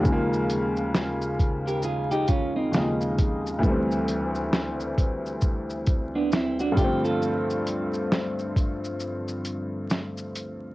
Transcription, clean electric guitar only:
X:1
M:4/4
L:1/16
Q:"Swing 16ths" 1/4=67
K:Gm
V:1 name="Clean electric guitar"
z6 z [GB] [F_A] [EG] [_DF] [CE]4- [CE] | z8 z3 [=B,D] [C=E] [D^F] G [=FA]- | [FA]4- [FA] z8 z3 |]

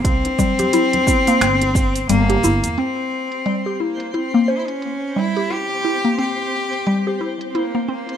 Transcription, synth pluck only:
X:1
M:4/4
L:1/16
Q:"Swing 16ths" 1/4=88
K:none
V:1 name="Synth pluck"
C2 G, G E2 E _B, C4 G, G E2 | C4 G, G E2 E _B, c4 G, G | E2 E _B, C4 G, G E2 E B, C2 |]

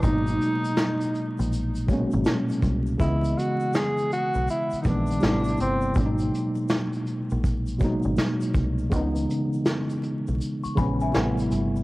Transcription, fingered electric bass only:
X:1
M:4/4
L:1/16
Q:"Swing 16ths" 1/4=81
K:G#m
V:1 name="Fingered electric bass" clef=bass
G,,,2 z4 z A,,,4 G,,, z2 ^B,,,2 | C,,2 z4 z B,,, z2 A,,,2 =A,,,2 =G,,,2 | G,,,2 z4 z A,,,4 G,,, z2 ^B,,,2 | C,,2 z4 z B,,, z2 A,,,2 =A,,,2 =G,,,2 |]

